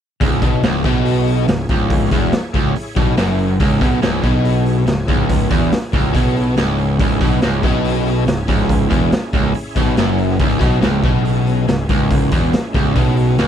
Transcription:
0.20 picked electric bass C#1, overdriven electric guitar C#2, tonewheel organ E4 G#4 C#5, kick, open hi-hat
0.42 picked electric bass B1, overdriven electric guitar B2, kick, open hi-hat
0.63 picked electric bass C#1, overdriven electric guitar C#2, snare, open hi-hat
0.84 picked electric bass B1, overdriven electric guitar B2, kick, open hi-hat
1.05 open hi-hat
1.27 open hi-hat
1.48 picked electric bass C#1, overdriven electric guitar C#2, snare, open hi-hat
1.69 picked electric bass C#1, overdriven electric guitar C#2, kick, open hi-hat
1.90 kick, open hi-hat
2.11 picked electric bass E1, overdriven electric guitar E2, kick, open hi-hat
2.32 snare, open hi-hat
2.54 picked electric bass C#1, overdriven electric guitar C#2, kick, open hi-hat
2.75 muted picked electric bass stroke, muted overdriven electric guitar stroke, open hi-hat
2.96 picked electric bass B1, overdriven electric guitar B2, kick, open hi-hat
3.17 picked electric bass F#1, overdriven electric guitar F#2, snare, open hi-hat
3.39 open hi-hat
3.60 picked electric bass C#1, overdriven electric guitar C#2, tonewheel organ E4 G#4 C#5, kick, open hi-hat
3.81 picked electric bass B1, overdriven electric guitar B2, kick, snare, open hi-hat
4.02 picked electric bass C#1, overdriven electric guitar C#2, snare, open hi-hat
4.23 picked electric bass B1, overdriven electric guitar B2, kick, open hi-hat
4.45 open hi-hat
4.66 open hi-hat
4.86 picked electric bass C#1, overdriven electric guitar C#2, snare, open hi-hat
5.08 picked electric bass C#1, overdriven electric guitar C#2, kick, open hi-hat
5.29 kick, open hi-hat
5.50 picked electric bass E1, overdriven electric guitar E2, kick, snare, open hi-hat
5.72 snare, open hi-hat
5.93 picked electric bass C#1, overdriven electric guitar C#2, kick, open hi-hat
6.14 picked electric bass B1, overdriven electric guitar B2, kick, open hi-hat
6.36 open hi-hat
6.57 picked electric bass C#1, overdriven electric guitar C#2, snare, open hi-hat
6.78 open hi-hat
6.99 picked electric bass C#1, overdriven electric guitar C#2, tonewheel organ C#4 E4 G#4, kick, open hi-hat
7.21 picked electric bass B1, overdriven electric guitar B2, kick, open hi-hat
7.42 picked electric bass C#1, overdriven electric guitar C#2, snare, open hi-hat
7.63 picked electric bass B1, overdriven electric guitar B2, kick, open hi-hat
7.85 open hi-hat
8.06 open hi-hat
8.26 picked electric bass C#1, overdriven electric guitar C#2, snare, open hi-hat
8.48 picked electric bass C#1, overdriven electric guitar C#2, kick, open hi-hat
8.60 snare
8.70 kick, open hi-hat
8.90 picked electric bass E1, overdriven electric guitar E2, kick, open hi-hat
9.12 snare, open hi-hat
9.33 picked electric bass C#1, overdriven electric guitar C#2, kick, open hi-hat
9.54 muted picked electric bass stroke, muted overdriven electric guitar stroke, open hi-hat
9.76 picked electric bass B1, overdriven electric guitar B2, kick, open hi-hat
9.97 picked electric bass F#1, overdriven electric guitar F#2, snare, open hi-hat
10.18 open hi-hat
10.29 snare
10.39 picked electric bass C#1, overdriven electric guitar C#2, tonewheel organ G#3 C#4 E4, kick, open hi-hat
10.60 picked electric bass B1, overdriven electric guitar B2, kick, snare, open hi-hat
10.81 picked electric bass C#1, overdriven electric guitar C#2, snare, open hi-hat
11.03 picked electric bass B1, overdriven electric guitar B2, kick, open hi-hat
11.25 open hi-hat
11.46 open hi-hat
11.68 picked electric bass C#1, overdriven electric guitar C#2, snare, open hi-hat
11.89 picked electric bass C#1, overdriven electric guitar C#2, kick, open hi-hat
12.11 kick, open hi-hat
12.32 picked electric bass E1, overdriven electric guitar E2, kick, open hi-hat
12.53 snare, open hi-hat
12.74 picked electric bass C#1, overdriven electric guitar C#2, kick, open hi-hat
12.95 picked electric bass B1, overdriven electric guitar B2, kick, open hi-hat
13.17 open hi-hat
13.38 picked electric bass C#1, overdriven electric guitar C#2, snare, open hi-hat

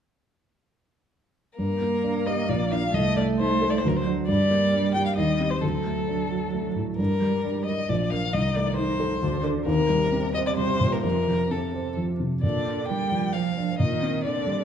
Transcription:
1.58 grand piano G2, cello A#3, violin A#4
1.81 grand piano A#3
2.04 grand piano D4
2.26 grand piano G4, violin D#5
2.49 grand piano A#1, violin D5
2.71 grand piano D4 F4, violin F5
2.93 grand piano C2, cello A3, violin D#5
3.17 grand piano A3, violin D5
3.39 grand piano D#4, violin C5
3.62 grand piano A4
3.70 violin D5
3.78 violin C5
3.84 grand piano D2, cello F#3, violin A#4
3.97 violin C5
4.06 grand piano D4 F#4
4.28 grand piano G2, cello G3, violin D5
4.50 grand piano A#3
4.73 grand piano D4
4.94 grand piano G4, violin G5
5.06 violin F5
5.16 grand piano D#2, cello G3, violin D#5
5.40 grand piano C4 G4
5.51 violin C5
5.61 grand piano D2, cello F#3, violin A4
5.86 grand piano A3
6.08 grand piano D4
6.31 grand piano F#4
6.54 grand piano A3
6.76 grand piano A2
6.98 grand piano G2, cello G3, violin A#4
7.22 grand piano G3
7.44 grand piano D4
7.66 grand piano A#4, violin D#5
7.89 grand piano A#1, cello F3, violin D5
8.11 grand piano D4 A#4, violin F5
8.33 grand piano C2, cello D#3, violin D#5
8.56 grand piano A3, violin D5
8.77 grand piano D#4, violin C5
9.00 grand piano A4
9.22 grand piano D2, cello D3
9.44 grand piano D4 A4
9.66 grand piano D#2, cello C3, violin A#4
9.89 grand piano G3
10.12 grand piano C4
10.34 grand piano C5, violin D#5
10.47 violin D5
10.57 grand piano G3, violin C5
10.81 grand piano A#2
10.92 violin A#4
11.04 grand piano F2, violin A#4
11.28 grand piano F3
11.51 grand piano C4, violin A4
11.74 grand piano C5
11.97 grand piano F3
12.20 grand piano C3
12.43 grand piano A#2, cello D3, violin D5
12.66 grand piano D4
12.88 cello G3, grand piano A#3, violin G5
13.12 grand piano F3
13.34 cello F3, violin F5
13.57 grand piano D4
13.79 grand piano A#2, cello D#3, violin D#5
14.02 grand piano C4
14.24 cello D3, grand piano A#3, violin D5
14.47 grand piano G3

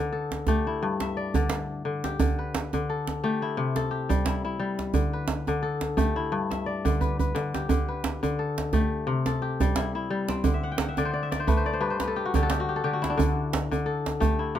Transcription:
Already playing: kora E4 B4
0.00 kora D3
0.12 kora A4
0.32 djembe slap
0.47 kora A3 G4, djembe slap, djembe bass
0.67 kora E4
0.83 kora G2
1.00 kora E5, djembe slap
1.17 kora D5
1.34 kora D3, djembe slap, djembe tone, djembe bass
1.50 djembe slap
1.85 kora D3
2.04 kora G4, djembe slap
2.19 kora D3, djembe bass
2.39 kora B4
2.55 djembe slap
2.73 kora D3, djembe tone
2.90 kora A4
3.07 djembe slap
3.24 kora A3 G4, djembe slap
3.42 kora E4
3.57 kora C3
3.76 kora A4, djembe slap
3.91 kora G4
4.09 kora G3, djembe slap, djembe tone, djembe bass
4.25 kora E4, djembe slap
4.45 kora E4
4.60 kora G3
4.79 djembe slap
4.94 kora D3, djembe bass
5.13 kora B4
5.28 djembe slap
5.47 kora D3, djembe tone
5.63 kora A4
5.81 djembe slap
5.97 kora A3 G4, djembe bass
6.16 kora E4
6.32 kora G2
6.51 kora E5, djembe slap
6.66 kora D5
6.85 kora D3, djembe tone, djembe bass
7.01 kora B4, djembe bass
7.19 kora B4, djembe bass
7.35 kora D3, djembe slap
7.54 kora G4, djembe slap
7.69 kora D3, djembe bass
7.88 kora B4
8.04 djembe slap
8.23 kora D3, djembe tone
8.39 kora A4
8.58 djembe slap
8.73 kora A3 G4, djembe slap, djembe bass
9.07 kora C3
9.26 kora A4, djembe slap
9.42 kora G4
9.60 kora G3, djembe slap, djembe tone, djembe bass
9.76 kora E4, djembe slap
9.95 kora E4
10.10 kora G3
10.29 kora C4, djembe slap
10.44 kora D3, djembe bass
10.54 kora E5
10.63 kora F#5
10.72 kora G5
10.78 kora F#5, djembe slap
10.89 kora E5
10.97 kora D3 D5, djembe tone
11.05 kora C5
11.13 kora D5
11.23 kora E5
11.32 kora D5, djembe slap
11.40 kora C5
11.47 kora A3 B4, djembe slap, djembe bass
11.57 kora C5
11.66 kora D5
11.73 kora C5
11.81 kora G2 B4
11.90 kora C5
11.99 kora B4, djembe slap
12.08 kora A4
12.16 kora G4
12.25 kora F#4
12.34 kora D3 G4, djembe slap, djembe tone, djembe bass
12.43 kora A4
12.50 kora G4, djembe slap
12.60 kora F#4
12.69 kora G4
12.76 kora A4
12.84 kora D3 G4
12.93 kora F#4
13.02 kora E4, djembe slap
13.10 kora D4
13.17 kora D3, djembe bass
13.53 djembe slap
13.71 kora D3, djembe tone
13.86 kora A4
14.06 djembe slap
14.20 kora A3 G4, djembe slap, djembe bass
14.39 kora E4
14.55 kora C3

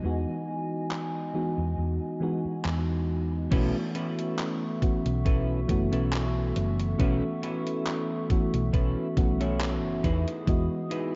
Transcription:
Already playing: fm electric piano E3 G#3 B3 D#4 F#4, ambient pad E3 D#5 G#5
0.03 fingered electric bass E2, fm electric piano E3 G#3 B3 D#4 F#4
0.91 clap
1.34 fm electric piano E3 G#3 B3 D#4 F#4
1.58 fingered electric bass E2
1.78 fingered electric bass E2
2.20 fm electric piano E3 G#3 B3 D#4 F#4
2.45 muted fingered electric bass stroke
2.65 fingered electric bass E2, clap
3.50 fingered electric bass B1, fm electric piano E3 A3 B3 C#4 F#4, clean electric guitar C#4 E4 A4 B4, ambient pad A4 E5 C#6, kick, closed hi-hat, crash
3.95 clean electric guitar C#4 E4 A4 B4, closed hi-hat
4.19 closed hi-hat
4.39 clap, closed hi-hat
4.82 fm electric piano E3 A3 B3 C#4 F#4, kick, closed hi-hat
5.06 fingered electric bass B1, closed hi-hat
5.25 clean electric guitar C#4 E4 A4 B4, kick, closed hi-hat
5.68 fingered electric bass F#1, fm electric piano E3 A3 B3 C#4 F#4, kick, closed hi-hat
5.92 fingered electric bass B1, clean electric guitar C#4 E4 A4 B4, closed hi-hat
6.13 clap, closed hi-hat
6.55 fingered electric bass F#1, muted clean electric guitar stroke, closed hi-hat
6.80 closed hi-hat
6.98 fingered electric bass B1, fm electric piano E3 A3 B3 C#4 F#4, clean electric guitar C#4 E4 A4 B4, kick, closed hi-hat
7.42 clean electric guitar C#4 E4 A4 B4, closed hi-hat
7.67 closed hi-hat
7.87 clap, closed hi-hat
8.30 fm electric piano E3 A3 B3 C#4 F#4, kick, closed hi-hat
8.54 fingered electric bass B1, closed hi-hat
8.73 fingered electric bass B1, clean electric guitar C#4 E4 A4 B4, kick, closed hi-hat
9.16 fingered electric bass B1, fm electric piano E3 A3 B3 C#4 F#4, kick, closed hi-hat
9.40 clean electric guitar C#4 E4 A4 C#5, closed hi-hat
9.61 clap, closed hi-hat
9.84 fingered electric bass F#1
10.03 fingered electric bass E2, clean electric guitar D#4 E4 G#4 B4, ambient pad G#4 D#6, kick, closed hi-hat
10.28 closed hi-hat
10.46 fingered electric bass E2, fm electric piano E3 G#3 B3 F#4 D#5, kick, closed hi-hat
10.90 clean electric guitar D#4 E4 G#4 B4, closed hi-hat

